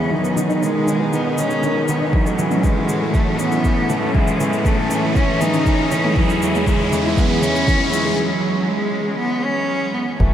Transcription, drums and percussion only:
0.24 shaker soft
0.37 shaker medium
0.50 shaker soft
0.63 shaker soft
0.88 shaker medium
1.13 shaker soft
1.38 shaker medium
1.50 shaker soft
1.63 shaker soft
1.88 shaker medium
2.13 kick loud
2.26 shaker soft
2.39 shaker medium
2.51 mid tom medium
2.51 shaker soft
2.63 kick loud
2.63 shaker soft
2.89 shaker medium
3.14 kick loud
3.14 shaker soft
3.39 shaker medium
3.52 shaker soft
3.64 kick loud
3.64 shaker soft
3.90 shaker medium
4.15 kick loud
4.27 shaker soft
4.40 shaker medium
4.53 shaker soft
4.65 kick loud
4.65 shaker soft
4.91 shaker medium
5.15 kick loud
5.15 shaker soft
5.41 mid tom medium
5.41 shaker medium
5.53 shaker soft
5.66 kick loud
5.66 shaker soft
5.91 shaker medium
6.04 mid tom medium
6.16 kick loud
6.30 shaker soft
6.42 shaker medium
6.55 mid tom medium
6.55 shaker soft
6.67 kick loud
6.67 shaker soft
6.92 shaker medium
7.17 kick loud
7.17 shaker soft
7.43 shaker medium
7.56 shaker soft
7.68 kick loud
7.68 shaker soft
7.93 shaker medium
10.20 kick loud

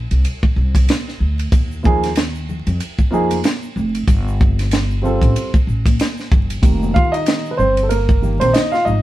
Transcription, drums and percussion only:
0.11 ride soft
0.25 ride medium
0.43 kick medium
0.75 kick medium
0.75 ride medium
0.89 snare loud
0.89 hi-hat pedal soft
0.89 ride medium
1.08 snare soft
1.39 ride medium
1.52 kick loud
1.52 ride medium
1.52 shaker medium
1.71 shaker medium
1.84 kick medium
1.84 high conga soft
1.84 low conga medium
1.84 shaker soft
2.03 snare soft
2.03 ride medium
2.03 shaker soft
2.15 snare loud
2.15 hi-hat pedal medium
2.15 ride medium
2.15 shaker medium
2.35 shaker soft
2.49 low conga medium
2.49 shaker soft
2.67 ride soft
2.67 shaker soft
2.80 ride medium
2.80 shaker medium
2.99 kick medium
2.99 shaker soft
3.13 shaker soft
3.31 ride medium
3.31 high conga medium
3.31 shaker soft
3.44 snare loud
3.44 hi-hat pedal medium
3.44 ride medium
3.44 shaker medium
3.62 shaker soft
3.77 low conga medium
3.77 shaker soft
3.95 ride medium
3.95 shaker soft
4.08 kick medium
4.08 ride medium
4.08 shaker medium
4.28 shaker medium
4.40 kick medium
4.40 high conga soft
4.40 low conga medium
4.40 shaker soft
4.59 snare soft
4.59 ride medium
4.59 shaker soft
4.71 snare medium
4.71 hi-hat pedal medium
4.71 ride medium
4.71 shaker medium
4.91 shaker soft
5.05 low conga medium
5.05 shaker soft
5.21 kick medium
5.21 ride soft
5.21 shaker soft
5.36 ride medium
5.36 shaker medium
5.54 kick medium
5.54 shaker soft
5.69 shaker medium
5.86 kick medium
5.86 ride medium
5.86 high conga medium
5.86 shaker soft
6.00 snare medium
6.00 hi-hat pedal soft
6.00 ride medium
6.00 shaker medium
6.18 snare soft
6.18 shaker soft
6.32 kick loud
6.32 low conga medium
6.32 shaker soft
6.50 ride medium
6.50 shaker soft
6.63 kick medium
6.63 ride medium
6.63 shaker medium
6.83 high conga medium
6.83 shaker medium
6.95 kick medium
6.95 shaker soft
7.14 ride medium
7.14 shaker soft
7.26 snare loud
7.26 hi-hat pedal medium
7.26 ride medium
7.26 shaker medium
7.45 shaker soft
7.59 low conga medium
7.59 shaker soft
7.77 ride soft
7.77 shaker soft
7.90 ride medium
7.90 shaker medium
8.09 kick medium
8.09 high conga soft
8.09 shaker soft
8.23 shaker medium
8.41 ride medium
8.41 high conga medium
8.41 shaker soft
8.54 snare loud
8.54 hi-hat pedal medium
8.54 ride medium
8.54 shaker medium
8.72 snare soft
8.72 shaker soft
8.87 low conga medium
8.87 shaker soft

